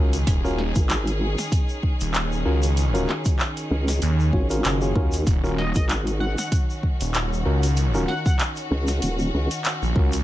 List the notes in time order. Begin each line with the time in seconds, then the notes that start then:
Already playing: C#2 D#3 C#4 F4 F#4 G#4 A#4
0.13 closed hi-hat, shaker
0.27 D#1, kick, closed hi-hat, shaker
0.44 C#4 F4 F#4 A#4, shaker
0.58 snare
0.75 G#1, kick, closed hi-hat, shaker
0.90 clap, closed hi-hat, shaker
1.07 closed hi-hat, shaker
1.38 snare, closed hi-hat, shaker
1.52 kick, closed hi-hat, shaker
1.69 shaker
1.83 kick
2.00 D#1, closed hi-hat, shaker
2.14 clap, closed hi-hat, shaker
2.32 shaker
2.45 C#2 C#4 F4 F#4 A#4
2.63 closed hi-hat, shaker
2.77 closed hi-hat, shaker
2.94 C#4 F4 F#4 A#4, closed hi-hat, shaker
3.09 clap, snare
3.25 kick, closed hi-hat, shaker
3.39 clap, shaker
3.57 closed hi-hat, shaker
3.71 C#2
3.88 snare, closed hi-hat, shaker
4.02 D#2, closed hi-hat, shaker
4.20 shaker
4.33 G#1 C#4 F4 F#4 C#5, kick
4.50 C#4 F4 F#4 A#4, closed hi-hat, shaker
4.64 F#1, clap, closed hi-hat, shaker
4.81 C#4 F4 F#4 G#4, shaker
4.95 D#2 C#4 F4 F#4 A#4, kick
5.12 closed hi-hat, shaker
5.26 D#1 F#4, kick, closed hi-hat, shaker
5.44 C#4 F4 F#4 A#4, shaker
5.58 D#5, snare
5.75 G#1 D#5, kick, closed hi-hat, shaker
5.89 clap, closed hi-hat, shaker
6.07 closed hi-hat, shaker
6.20 F#5
6.38 F#5, snare, closed hi-hat, shaker
6.52 kick, closed hi-hat, shaker
6.70 shaker
6.83 kick
7.01 D#1, closed hi-hat, shaker
7.14 clap, closed hi-hat, shaker
7.33 shaker
7.45 C#2 C#4 F4 F#4 A#4
7.63 closed hi-hat, shaker
7.77 closed hi-hat, shaker
7.94 C#4 F4 F#4 A#4, shaker
8.08 F#5, snare
8.26 F#5, kick, shaker
8.39 clap, closed hi-hat, shaker
8.56 closed hi-hat, shaker
8.71 C#2
8.88 snare, closed hi-hat, shaker
9.02 D#1, closed hi-hat, shaker
9.19 shaker
9.34 C#2
9.51 closed hi-hat, shaker
9.65 clap, closed hi-hat, shaker
9.82 A#1, shaker
9.95 C#2 C#4 F4 F#4 A#4, kick
10.12 closed hi-hat, shaker